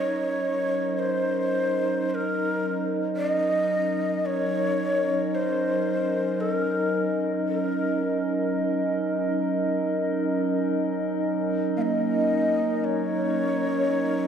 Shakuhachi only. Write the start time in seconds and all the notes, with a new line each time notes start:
Already playing: C#5
0.99 C5
2.10 C5
2.15 A#4
3.17 D5
3.30 D#5
4.26 C#5
5.35 C5
6.40 A4
6.53 A#4
7.48 A#4
11.77 F5
11.82 D#5
12.84 C#5